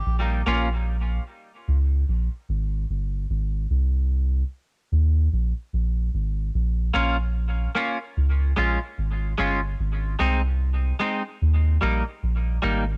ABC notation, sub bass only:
X:1
M:4/4
L:1/16
Q:"Swing 16ths" 1/4=74
K:Bbdor
V:1 name="Sub bass" clef=bass
B,,,2 B,,,4 z2 D,,2 B,,, z A,,,2 G,,,2 | A,,,2 C,,4 z2 E,,2 B,,, z B,,,2 A,,,2 | B,,,2 B,,,4 z2 D,,2 B,,, z A,,,2 G,,,2 | A,,,2 C,,4 z2 E,,2 B,,, z B,,,2 A,,,2 |]